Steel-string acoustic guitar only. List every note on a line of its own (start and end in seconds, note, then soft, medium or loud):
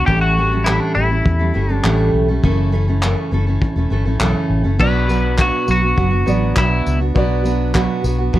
0.07 0.37 A2 medium
0.07 0.37 E3 medium
0.07 0.36 G3 medium
0.07 0.37 A3 medium
0.07 0.37 C#4 medium
0.07 0.38 A4 medium
0.37 0.52 G3 medium
0.37 0.52 A3 medium
0.37 0.51 C#4 medium
0.37 0.50 A4 medium
0.52 0.66 G3 soft
0.52 0.66 A3 soft
0.52 0.66 C#4 soft
0.52 0.67 A4 medium
0.66 0.96 A2 medium
0.66 0.97 E3 medium
0.66 0.95 G3 medium
0.66 0.95 A3 medium
0.66 0.96 C#4 medium
0.66 0.97 A4 medium
0.96 1.11 G3 medium
0.96 1.10 A3 medium
0.96 1.09 C#4 medium
0.96 1.08 A4 medium
1.10 1.41 G3 soft
1.10 1.39 A3 soft
1.10 1.39 C#4 soft
1.39 1.53 G3 soft
1.39 1.54 A3 soft
1.39 1.54 C#4 soft
1.39 1.55 A4 soft
1.54 1.69 G3 medium
1.54 1.69 A3 medium
1.54 1.68 C#4 medium
1.54 1.67 A4 medium
1.69 1.84 G3 soft
1.69 1.84 A3 soft
1.69 1.84 C#4 medium
1.69 1.84 A4 medium
1.84 2.29 A2 medium
1.84 2.29 E3 medium
1.84 2.29 G3 medium
1.84 2.29 A3 medium
1.84 2.28 C#4 medium
1.84 2.27 A4 medium
2.28 2.44 G3 soft
2.28 2.43 A3 soft
2.28 2.43 C#4 medium
2.28 2.43 A4 medium
2.43 2.73 F#2 medium
2.43 2.73 C#3 medium
2.43 2.71 E3 medium
2.43 2.72 A3 medium
2.43 2.73 C#4 medium
2.43 2.74 A4 medium
2.72 2.88 E3 medium
2.72 2.88 A3 medium
2.72 2.87 C#4 medium
2.72 2.86 A4 medium
2.88 3.02 E3 medium
2.88 3.02 A3 medium
2.88 3.02 C#4 medium
2.88 3.03 A4 medium
3.02 3.32 F#2 medium
3.02 3.32 C#3 medium
3.02 3.30 E3 medium
3.02 3.31 A3 medium
3.02 3.32 C#4 medium
3.02 3.33 A4 medium
3.32 3.47 E3 medium
3.32 3.47 A3 medium
3.32 3.46 C#4 medium
3.32 3.46 A4 medium
3.47 3.77 E3 soft
3.47 3.77 A3 soft
3.47 3.76 C#4 soft
3.47 3.75 A4 medium
3.76 3.89 E3 soft
3.76 3.90 A3 soft
3.76 3.91 C#4 medium
3.76 3.91 A4 medium
3.90 4.06 E3 medium
3.90 4.06 A3 medium
3.90 4.05 C#4 medium
3.90 4.04 A4 medium
4.05 4.19 E3 soft
4.05 4.20 A3 medium
4.05 4.20 C#4 soft
4.05 4.20 A4 medium
4.20 4.65 F#2 medium
4.20 4.65 C#3 medium
4.20 4.64 E3 medium
4.20 4.64 A3 medium
4.20 4.63 C#4 medium
4.20 4.62 A4 medium
4.64 4.79 E3 soft
4.64 4.79 A3 soft
4.64 4.79 C#4 medium
4.64 4.79 A4 medium
4.79 5.09 B2 medium
4.79 5.07 F#3 medium
4.79 5.08 B3 medium
4.79 5.09 D4 medium
4.79 5.09 F#4 medium
5.08 5.37 F#3 medium
5.08 5.37 B3 medium
5.08 5.38 D4 medium
5.08 5.38 F#4 medium
5.37 5.68 B2 medium
5.37 5.66 F#3 medium
5.37 5.66 B3 medium
5.37 5.67 D4 medium
5.37 5.68 F#4 medium
5.67 5.82 F#3 medium
5.67 5.83 B3 medium
5.67 5.82 D4 medium
5.67 5.81 F#4 medium
5.82 5.96 B3 soft
5.82 5.97 D4 soft
5.82 5.97 F#4 soft
5.96 6.12 F#3 medium
5.96 6.11 B3 medium
5.96 6.11 D4 medium
5.96 6.09 F#4 medium
6.11 6.25 B3 soft
6.11 6.26 D4 soft
6.11 6.26 F#4 medium
6.26 6.55 F#3 medium
6.26 6.55 B3 medium
6.26 6.56 D4 medium
6.26 6.56 F#4 medium
6.56 7.00 B2 medium
6.56 7.01 F#3 medium
6.56 7.01 B3 medium
6.56 7.00 D4 medium
6.56 6.99 F#4 medium
7.00 7.15 B3 soft
7.00 7.15 D4 soft
7.00 7.15 F#4 medium
7.15 7.45 B2 medium
7.15 7.43 F#3 medium
7.15 7.44 B3 medium
7.15 7.44 D4 medium
7.15 7.45 F#4 medium
7.44 7.73 F#3 medium
7.44 7.74 B3 medium
7.44 7.74 D4 medium
7.44 7.74 F#4 medium
7.74 8.04 B2 medium
7.74 8.02 F#3 medium
7.74 8.03 B3 medium
7.74 8.04 D4 medium
7.74 8.05 F#4 medium
8.04 8.19 F#3 medium
8.04 8.19 B3 medium
8.04 8.18 D4 medium
8.04 8.17 F#4 medium
8.18 8.32 B3 medium
8.18 8.33 D4 soft
8.18 8.33 F#4 medium
8.33 8.39 F#3 medium
8.33 8.39 B3 medium
8.33 8.39 D4 medium
8.33 8.39 F#4 medium